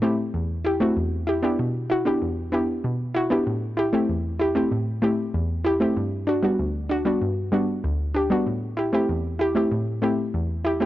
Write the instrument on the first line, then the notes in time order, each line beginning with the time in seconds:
synth pluck
Already playing: A2
0.02 A3 C4 E4 G4
0.34 E2
0.65 E4 G4
0.80 A3 C4 E4 F#4
0.97 E2
1.27 E4 G4
1.43 B3 D4 E4 G4
1.59 B2
1.90 E4 F#4
2.05 B3 D4 E4 G4
2.22 E2
2.52 B3 D4 E4 G4
2.84 B2
3.14 E4 F#4
3.30 B3 D4 E4 G4
3.47 A2
3.77 E4 G4
3.93 A3 C4 E4 G4
4.09 E2
4.39 E4 G4
4.55 A3 C4 E4 G4
4.72 A2
5.02 A3 C4 E4 G4
5.34 E2
5.65 E4 G4
5.80 A3 C4 E4 G4
5.97 G2
6.27 D4 F#4
6.43 G3 B3 D4 F#4
6.59 D2
6.89 D4 F#4
7.05 G3 B3 D4 F#4
7.21 G2
7.52 G3 B3 D4 F#4
7.84 D2
8.14 D4 G4
8.30 G3 B3 D4 F#4
8.47 A2
8.77 E4 G4
8.93 A3 C4 E4 G4
9.09 E2
9.39 E4 G4
9.55 A3 C4 E4 G4
9.71 A2
10.02 A3 C4 E4 G4
10.34 E2
10.65 E4 G4
10.80 A3 C4 E4 G4